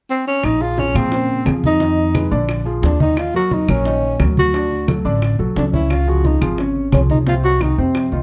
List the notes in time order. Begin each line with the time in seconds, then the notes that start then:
0.10 C4
0.27 C#4
0.43 A#1 D#4, high bongo, high conga, claves
0.61 F3 F4 G#4, high conga
0.78 C#4, high bongo, high conga
0.95 A#2 F3 C4 F4 G#4, high conga, claves
1.12 C#3 A#3 C5, high bongo, high conga
1.30 high conga
1.46 F2 F3 F4 G#4, high bongo, low bongo, high conga, claves
1.64 D#4, high conga
1.80 D#3 D#4 D#5, high bongo, high conga
1.98 high bongo, high conga
2.14 G#3 G#4 B4, high bongo, high conga, claves
2.31 A#1 D3 D4 D5
2.49 high bongo, high conga, claves
2.65 F3 F4 G#4, high bongo, high conga
2.82 D#2 D4, high bongo, low bongo, high conga
3.00 D#3 D#4 D#5, high bongo, high conga
3.17 F4, high bongo, high conga, claves
3.34 F#3 F#4 A#4, high conga
3.51 D#4, high bongo, high conga
3.68 A#1 F#3 C#4 F#4 A#4, high conga, claves
3.85 D#3 D#4 D#5, high bongo, high conga
4.03 high conga
4.19 D2 F#3 F#4 A#4, high bongo, low bongo, high conga, claves
4.37 F#4, high conga
4.54 D3 D4 D5, high bongo, high conga
4.71 high bongo, high conga
4.88 F#3 F#4 A4, high bongo, high conga, claves
5.05 A1 D3 D4 D5
5.22 high bongo, high conga, claves
5.39 B1 F#3 F#4 A4, high bongo, high conga
5.56 C#2 D4, high bongo, low bongo, high conga
5.73 C#3 C#4 E4 C#5, high bongo, high conga
5.90 F4, high bongo, high conga, claves
6.07 F3 F4 F#4 G#4, high conga
6.25 D#4, high bongo, high conga
6.41 G#1 F3 F4 G#4, high conga, claves
6.58 C#3 C#4 C#5, high bongo, high conga
6.76 high conga
6.92 C2 F3 C#4 F4 G#4, high bongo, low bongo, high conga, claves
7.10 D#4, high conga
7.27 C3 C4 F4 C5, high bongo, high conga
7.44 F#4, high bongo, high conga
7.61 D#3 D#4 F#4, high bongo, high conga, claves
7.78 F2 C3 C4 C5
7.95 high bongo, high conga, claves
8.12 C2 D#3 D#4 F4, high bongo, high conga